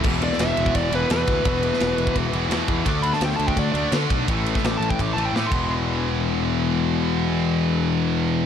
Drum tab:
CC |x---------------|----------------|----------------|--------------x-|
RD |--x-x-x-x-x-x-x-|x-x-x-x-x-x-x-x-|x-x-x-x-x-x-x-x-|x-x-x-x-x-x-----|
SD |---oo-------o---|---oo-------o---|---ooo------o---|---oo-------o---|
BD |o------oo-----o-|o------oo-----o-|o------oo-----o-|o--o---oo-----o-|

CC |----------------|----------------|
RD |----------------|----------------|
SD |----------------|----------------|
BD |----------------|----------------|